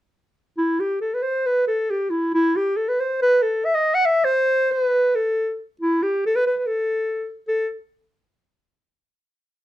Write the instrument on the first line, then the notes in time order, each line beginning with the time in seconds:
clarinet
0.57 E4
0.80 G4
1.01 A4
1.14 B4
1.22 C5
1.46 B4
1.67 A4
1.90 G4
2.10 E4
2.34 E4
2.56 G4
2.76 A4
2.88 B4
3.00 C5
3.22 B4
3.42 A4
3.65 E5
3.74 D#5
3.94 F#5
4.05 E5
4.24 C5
4.71 B4
5.15 A4
5.81 E4
6.02 G4
6.26 A4
6.36 B4
6.46 B4
6.57 B4
6.66 A4
7.48 A4